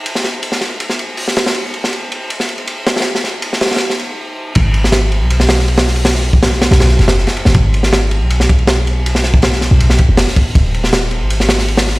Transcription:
<<
  \new Staff \with { instrumentName = "808-style bass" } { \clef bass \time 4/4 \key gis \minor \tempo 4 = 160 r1 | r1 | r1 | gis,,4.~ gis,,16 b,,2~ b,,16~ |
b,,4.~ b,,16 b,,8. fis,,8. r8 gis,,16 | gis,,4.~ gis,,16 b,,2~ b,,16~ | b,,4.~ b,,16 b,,8. r16 fis,,8 r8. | dis,,4.~ dis,,16 gis,,2~ gis,,16 | }
  \new DrumStaff \with { instrumentName = "Drums" } \drummode { \time 4/4 cymr16 sn16 <cymr sn>8 cymr16 sn16 <cymr sn>8 cymr16 sn16 cymr8 hho16 sn16 <cymr sn>16 <cymr sn>16 | cymr8 cymr16 sn16 cymr8 cymr8 cymr16 sn16 cymr16 cymr16 cymr8 <cymr sn>16 <cymr sn>32 <cymr sn>32 | cymr16 sn16 <cymr sn>8 cymr16 sn16 <cymr sn>32 <cymr sn>32 <cymr sn>32 <cymr sn>32 cymr16 sn16 cymr8 r4 | <cymc bd cymr>8 cymr16 sn16 <cymr sn>8 cymr8 cymr16 sn16 <hho sn>16 sn16 cymr16 <hho sn>16 sn16 cymr16 |
<hho sn>16 sn16 cymr16 bd16 <cymr sn>16 sn16 <cymr sn>16 <cymr sn>16 <cymr sn>16 sn16 <cymr sn>16 <cymr sn>16 sn16 <cymr sn>16 cymr16 sn16 | <bd cymr>8 cymr16 sn16 <cymr sn>8 cymr8 cymr16 sn16 <bd cymr>16 cymr16 <cymr sn>8 cymr8 | cymr16 sn16 <cymr sn>16 bd16 <cymr sn>16 sn16 <cymr sn>8 cymr16 sn16 <bd cymr>8 <hho sn>16 sn16 <bd cymr>8 | <bd cymr>8 cymr16 sn16 <cymr sn>8 cymr8 cymr16 sn16 <hho sn>16 sn16 cymr16 <hho sn>16 sn16 cymr16 | }
>>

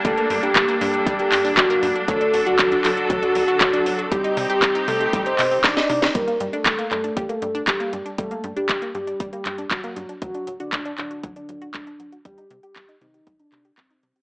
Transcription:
<<
  \new Staff \with { instrumentName = "Soft synth lead" } { \time 4/4 \key g \minor \tempo 4 = 118 a'8. g'8. g'8. g'8. fis'8. r16 | a'8. fis'8. fis'8. fis'8. fis'8. r16 | g'8. g'8. a'8. c''8. d''8. r16 | bes'8. a'8. a'8. a'8. g'8. r16 |
a'8. g'8. g'8. g'8. fis'8. r16 | fis'8. d'8. d'8. d'8. d'8. r16 | g'8. g'8. ees'8. d'8. c'8. r16 | }
  \new Staff \with { instrumentName = "String section" } { \time 4/4 \key g \minor << { <g bes a'>1 | <d fis' a'>1 | <ees' g'>1 | r1 |
r1 | r1 | r1 | } \\ { d'1~ | d'1 | c'1 | r1 |
r1 | r1 | r1 | } >> }
  \new Staff \with { instrumentName = "Synth arpeggio sound" } { \time 4/4 \key g \minor g16 bes16 g16 d'16 g16 bes16 g16 d'16 g16 bes16 g16 d'16 g16 bes16 g16 d'16 | fis16 d'16 fis16 fis'16 fis16 d'16 fis16 fis'16 fis16 d'16 fis16 fis'16 fis16 d'16 fis16 fis'16 | g16 ees'16 g16 g'16 g16 ees'16 g16 g'16 g16 ees'16 ees''16 c'16 ees'16 ees''16 ees'16 ees'16 | g16 bes16 g16 d'16 g16 bes16 g16 d'16 g16 bes16 g16 d'16 g16 bes16 g16 d'16 |
g16 bes16 g16 d'16 g16 bes16 g16 d'16 g16 bes16 g16 d'16 g16 bes16 g16 d'16 | fis16 d'16 fis16 fis'16 fis16 d'16 fis16 fis'16 fis16 d'16 fis16 fis'16 fis16 d'16 fis16 fis'16 | g16 ees'16 g16 g'16 g16 ees'16 g16 g'16 g16 ees'16 g16 g'16 g16 ees'16 g16 g'16 | }
  \new Staff \with { instrumentName = "Analog synth bass" } { \clef bass \time 4/4 \key g \minor g,,8 g,8 g,,8 g,8 g,,8 g,8 g,,8 g,8 | d,8 d,,8 d,8 d,,8 d,8 d,,8 d,8 d,,8 | c,8 c8 c,8 c8 c,8 c8 c,8 c8 | g,,8 g,8 g,,8 g,8 g,,8 g,8 g,,8 g,8 |
g,,8 g,8 g,,8 g,8 g,,8 g,8 g,,8 g,8 | d,8 d,,8 d,8 d,,8 d,8 d,,8 d,8 d,,8 | c,8 c8 c,8 c8 c,8 c8 c,8 c8 | }
  \new DrumStaff \with { instrumentName = "Drums" } \drummode { \time 4/4 <hh bd>16 hh16 hho16 hh16 <hc hh bd>16 hh16 hho16 hh16 <hh bd>16 hh16 <hc hho>16 hho16 <hc hh bd>16 hh16 hho16 hh16 | <hh bd>16 hh16 hho16 hh16 <hc hh bd>16 hh16 <hc hho>16 hh16 <hh bd>16 hh16 hho16 hh16 <hc hh bd>16 hh16 hho16 hh16 | <hh bd>16 hh16 hho16 hh16 <hc hh bd>16 hh16 hho16 hh16 <hh bd>16 hh16 <hc hho>16 hho16 <hc hh bd sn>16 <hh sn>16 hho16 <hh sn>16 | <hh bd>16 hh16 hh16 hh16 <hc hh bd>16 hh16 <hc hh>16 hh16 <hh bd>16 hh16 hh16 hh16 <hc hh bd>16 hh16 hh16 hh16 |
<hh bd>16 hh16 hh16 hh16 <hc hh bd>16 hh16 hh16 hh16 <hh bd>16 hh16 <hc hh>16 hh16 <hc hh bd>16 hh16 hh16 hh16 | <hh bd>16 hh16 hh16 hh16 <hc hh bd>16 hh16 <hc hh>16 hh16 <hh bd>16 hh16 hh16 hh16 <hc hh bd>16 hh16 hh16 hh16 | <hh bd>16 hh16 hh16 hh16 <hc hh bd>16 hh16 hh16 hh16 <hh bd>16 hh16 <hc hh>16 hh16 <hc hh bd>16 hh16 hh16 hh16 | }
>>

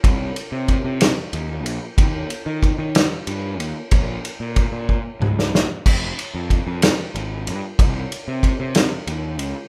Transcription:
<<
  \new Staff \with { instrumentName = "Picked electric bass" } { \clef bass \time 6/8 \key c \phrygian \tempo 4. = 62 c,8 r16 c8 c8 r16 ees,8 bes,,16 r16 | ees,8 r16 ees8 ees8 r16 g,8 ees,16 r16 | bes,,8 r16 bes,8 bes,8 r16 des,8 bes,,16 r16 | f,,8 r16 f,8 f,8 r16 aes,,8 g,16 r16 |
c,8 r16 c8 c8 r16 ees,8 des,16 r16 | }
  \new DrumStaff \with { instrumentName = "Drums" } \drummode { \time 6/8 <bd cymr>8 cymr8 <bd cymr>8 <cymr sn>8 cymr8 cymr8 | <bd cymr>8 cymr8 <bd cymr>8 <cymr sn>8 cymr8 cymr8 | <bd cymr>8 cymr8 <bd cymr>8 bd8 toml16 sn16 sn8 | <cymc bd>8 cymr8 <bd cymr>8 <cymr sn>8 cymr8 cymr8 |
<bd cymr>8 cymr8 <bd cymr>8 <cymr sn>8 cymr8 cymr8 | }
>>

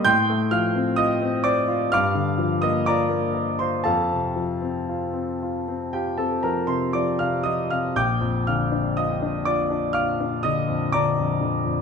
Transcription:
<<
  \new Staff \with { instrumentName = "Grand piano" } { \time 4/4 \key bes \major \tempo 4 = 61 <g'' c''' g'''>8 <f'' f'''>8 <ees'' ees'''>8 <d'' d'''>8 <f'' d''' f'''>8. <ees'' ees'''>16 <d'' bes'' d'''>8. <c'' c'''>16 | <a' f'' a''>2 <g' g''>16 <a' a''>16 <bes' bes''>16 <c'' c'''>16 <d'' d'''>16 <f'' f'''>16 <ees'' ees'''>16 <f'' f'''>16 | <g'' d''' g'''>8 <f'' f'''>8 <ees'' ees'''>8 <d'' d'''>8 <f'' d''' f'''>8 <ees'' ees'''>8 <d'' bes'' d'''>4 | }
  \new Staff \with { instrumentName = "Grand piano" } { \time 4/4 \key bes \major a,16 a16 f16 c'16 f'16 c'16 c''16 f'16 g,16 d16 f16 bes16 f'16 bes16 bes'16 f'16 | f,16 c16 f16 c'16 f'16 c'16 f'16 c'16 f'16 c'16 f16 c16 f16 c16 f16 c16 | bes,,16 f,16 d16 d'16 f'16 d'16 f'16 d'16 f'16 d'16 d16 f,16 d16 f,16 d16 f,16 | }
>>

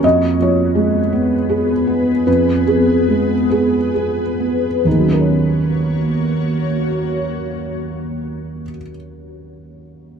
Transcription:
<<
  \new Staff \with { instrumentName = "Ambient pad" } { \time 6/8 \key ees \minor \tempo 4. = 45 <ces' aes' ces''>2.~ | <ces' aes' ces''>2. | <bes ges' des''>2.~ | <bes ges' des''>2. | }
  \new Staff \with { instrumentName = "Felt piano" } { \time 6/8 \key ees \minor ees''8 des''2~ des''8 | ces''8 aes'4 aes'4. | <ees, ees ges des' ees' bes' des''>2.~ | <ees, ees ges des' ees' bes' des''>2. | }
  \new Staff \with { instrumentName = "Felt piano" } { \time 6/8 \key ees \minor f,8 f8 aes8 ces'8 aes'8 ces'8 | f,8 f8 aes8 ces'8 aes'8 ces'8 | r2. | r2. | }
>>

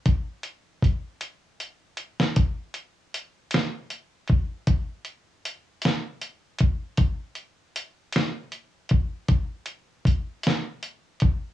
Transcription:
\new DrumStaff \with { instrumentName = "Drums" } \drummode { \time 6/8 \tempo 4. = 52 <hh bd>8 hh8 <hh bd>8 hh8 hh8 hh16 sn16 | <hh bd>8 hh8 hh8 <hh sn>8 hh8 <hh bd>8 | <hh bd>8 hh8 hh8 <hh sn>8 hh8 <hh bd>8 | <hh bd>8 hh8 hh8 <hh sn>8 hh8 <hh bd>8 |
<hh bd>8 hh8 <hh bd>8 <hh sn>8 hh8 <hh bd>8 | }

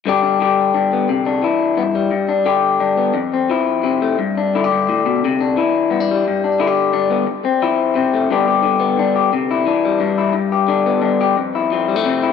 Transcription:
\new Staff \with { instrumentName = "Clean electric guitar" } { \time 12/8 \key g \mixolydian \tempo 4. = 117 << { <d d' g'>8 d'8 g'4 d'8 b8 r8 d'8 e'4 b16 r16 g8~ | g8 d'8 g'4 d'8 b8 r8 c'8 e'4 c'8 a8 | r8 d'8 e'16 g'4.~ g'16 r8 d'8 e'4 b16 d'16 g8~ | g8 d'8 e'16 g'8. d'8 b8 r8 c'8 e'4 c'8 a8 |
<d b d' g'>8 g'4 b8 d'8 g'8 r8 e'8 d'8 g8 d'8 e'8 | r8 g'8 d'8 b8 d'8 g'8 r8 e'8 c'8 g16 a16 c'8 e'8 | } \\ { g,4 d4 g,4 c4 e4 g,4 | g,4 d4 g,4 f,4 f4 c4 | g,4 d8 g,8 a,8 b,8 c4 e4 g,4 | g,4 d4 g,4 r4 f4 c4 |
g,4 d4 g,4 c4 e4 g,4 | g,4 d4 g,4 f,4 f4 c4 | } >> }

